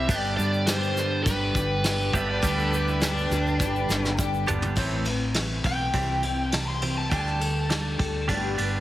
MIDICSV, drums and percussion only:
0, 0, Header, 1, 2, 480
1, 0, Start_track
1, 0, Tempo, 585938
1, 78, Time_signature, 4, 2, 24, 8
1, 7211, End_track
2, 0, Start_track
2, 0, Title_t, "Drums"
2, 72, Note_on_c, 9, 36, 109
2, 75, Note_on_c, 9, 49, 64
2, 77, Note_on_c, 9, 82, 95
2, 154, Note_off_c, 9, 36, 0
2, 157, Note_off_c, 9, 49, 0
2, 159, Note_off_c, 9, 82, 0
2, 201, Note_on_c, 9, 82, 30
2, 283, Note_off_c, 9, 82, 0
2, 321, Note_on_c, 9, 82, 90
2, 403, Note_off_c, 9, 82, 0
2, 440, Note_on_c, 9, 82, 28
2, 522, Note_off_c, 9, 82, 0
2, 546, Note_on_c, 9, 49, 65
2, 552, Note_on_c, 9, 38, 109
2, 557, Note_on_c, 9, 82, 111
2, 628, Note_off_c, 9, 49, 0
2, 634, Note_off_c, 9, 38, 0
2, 639, Note_off_c, 9, 82, 0
2, 682, Note_on_c, 9, 82, 31
2, 764, Note_off_c, 9, 82, 0
2, 794, Note_on_c, 9, 38, 36
2, 797, Note_on_c, 9, 82, 77
2, 876, Note_off_c, 9, 38, 0
2, 879, Note_off_c, 9, 82, 0
2, 1030, Note_on_c, 9, 49, 53
2, 1031, Note_on_c, 9, 36, 105
2, 1038, Note_on_c, 9, 82, 118
2, 1112, Note_off_c, 9, 49, 0
2, 1113, Note_off_c, 9, 36, 0
2, 1120, Note_off_c, 9, 82, 0
2, 1269, Note_on_c, 9, 36, 89
2, 1280, Note_on_c, 9, 82, 87
2, 1351, Note_off_c, 9, 36, 0
2, 1362, Note_off_c, 9, 82, 0
2, 1506, Note_on_c, 9, 49, 64
2, 1512, Note_on_c, 9, 38, 109
2, 1518, Note_on_c, 9, 82, 98
2, 1588, Note_off_c, 9, 49, 0
2, 1594, Note_off_c, 9, 38, 0
2, 1600, Note_off_c, 9, 82, 0
2, 1640, Note_on_c, 9, 82, 29
2, 1722, Note_off_c, 9, 82, 0
2, 1748, Note_on_c, 9, 36, 88
2, 1760, Note_on_c, 9, 82, 98
2, 1830, Note_off_c, 9, 36, 0
2, 1842, Note_off_c, 9, 82, 0
2, 1988, Note_on_c, 9, 36, 102
2, 1988, Note_on_c, 9, 49, 54
2, 1997, Note_on_c, 9, 82, 112
2, 2070, Note_off_c, 9, 36, 0
2, 2070, Note_off_c, 9, 49, 0
2, 2079, Note_off_c, 9, 82, 0
2, 2123, Note_on_c, 9, 82, 30
2, 2205, Note_off_c, 9, 82, 0
2, 2239, Note_on_c, 9, 82, 89
2, 2321, Note_off_c, 9, 82, 0
2, 2360, Note_on_c, 9, 82, 30
2, 2442, Note_off_c, 9, 82, 0
2, 2467, Note_on_c, 9, 49, 56
2, 2473, Note_on_c, 9, 38, 106
2, 2481, Note_on_c, 9, 82, 119
2, 2549, Note_off_c, 9, 49, 0
2, 2554, Note_off_c, 9, 38, 0
2, 2563, Note_off_c, 9, 82, 0
2, 2605, Note_on_c, 9, 82, 30
2, 2687, Note_off_c, 9, 82, 0
2, 2712, Note_on_c, 9, 38, 36
2, 2719, Note_on_c, 9, 82, 78
2, 2794, Note_off_c, 9, 38, 0
2, 2801, Note_off_c, 9, 82, 0
2, 2843, Note_on_c, 9, 82, 30
2, 2925, Note_off_c, 9, 82, 0
2, 2948, Note_on_c, 9, 36, 107
2, 2948, Note_on_c, 9, 48, 55
2, 2961, Note_on_c, 9, 82, 110
2, 3029, Note_off_c, 9, 48, 0
2, 3030, Note_off_c, 9, 36, 0
2, 3043, Note_off_c, 9, 82, 0
2, 3078, Note_on_c, 9, 82, 32
2, 3160, Note_off_c, 9, 82, 0
2, 3194, Note_on_c, 9, 82, 83
2, 3197, Note_on_c, 9, 38, 73
2, 3276, Note_off_c, 9, 82, 0
2, 3279, Note_off_c, 9, 38, 0
2, 3313, Note_on_c, 9, 82, 31
2, 3319, Note_on_c, 9, 38, 73
2, 3395, Note_off_c, 9, 82, 0
2, 3401, Note_off_c, 9, 38, 0
2, 3429, Note_on_c, 9, 36, 94
2, 3435, Note_on_c, 9, 82, 102
2, 3511, Note_off_c, 9, 36, 0
2, 3517, Note_off_c, 9, 82, 0
2, 3555, Note_on_c, 9, 82, 32
2, 3637, Note_off_c, 9, 82, 0
2, 3669, Note_on_c, 9, 43, 100
2, 3675, Note_on_c, 9, 82, 88
2, 3751, Note_off_c, 9, 43, 0
2, 3756, Note_off_c, 9, 82, 0
2, 3786, Note_on_c, 9, 43, 103
2, 3795, Note_on_c, 9, 82, 26
2, 3868, Note_off_c, 9, 43, 0
2, 3877, Note_off_c, 9, 82, 0
2, 3905, Note_on_c, 9, 36, 99
2, 3905, Note_on_c, 9, 57, 93
2, 3987, Note_off_c, 9, 36, 0
2, 3987, Note_off_c, 9, 57, 0
2, 4137, Note_on_c, 9, 51, 72
2, 4219, Note_off_c, 9, 51, 0
2, 4376, Note_on_c, 9, 51, 86
2, 4382, Note_on_c, 9, 38, 101
2, 4458, Note_off_c, 9, 51, 0
2, 4464, Note_off_c, 9, 38, 0
2, 4620, Note_on_c, 9, 51, 76
2, 4622, Note_on_c, 9, 36, 89
2, 4702, Note_off_c, 9, 51, 0
2, 4704, Note_off_c, 9, 36, 0
2, 4860, Note_on_c, 9, 51, 76
2, 4863, Note_on_c, 9, 36, 100
2, 4942, Note_off_c, 9, 51, 0
2, 4945, Note_off_c, 9, 36, 0
2, 5100, Note_on_c, 9, 51, 63
2, 5182, Note_off_c, 9, 51, 0
2, 5342, Note_on_c, 9, 51, 86
2, 5348, Note_on_c, 9, 38, 106
2, 5424, Note_off_c, 9, 51, 0
2, 5430, Note_off_c, 9, 38, 0
2, 5584, Note_on_c, 9, 51, 69
2, 5666, Note_off_c, 9, 51, 0
2, 5828, Note_on_c, 9, 36, 104
2, 5829, Note_on_c, 9, 51, 77
2, 5910, Note_off_c, 9, 36, 0
2, 5911, Note_off_c, 9, 51, 0
2, 5957, Note_on_c, 9, 38, 32
2, 6039, Note_off_c, 9, 38, 0
2, 6071, Note_on_c, 9, 51, 64
2, 6153, Note_off_c, 9, 51, 0
2, 6308, Note_on_c, 9, 51, 82
2, 6313, Note_on_c, 9, 38, 107
2, 6389, Note_off_c, 9, 51, 0
2, 6395, Note_off_c, 9, 38, 0
2, 6548, Note_on_c, 9, 51, 61
2, 6549, Note_on_c, 9, 36, 88
2, 6630, Note_off_c, 9, 51, 0
2, 6631, Note_off_c, 9, 36, 0
2, 6789, Note_on_c, 9, 51, 74
2, 6790, Note_on_c, 9, 36, 98
2, 6871, Note_off_c, 9, 51, 0
2, 6872, Note_off_c, 9, 36, 0
2, 7030, Note_on_c, 9, 51, 64
2, 7112, Note_off_c, 9, 51, 0
2, 7211, End_track
0, 0, End_of_file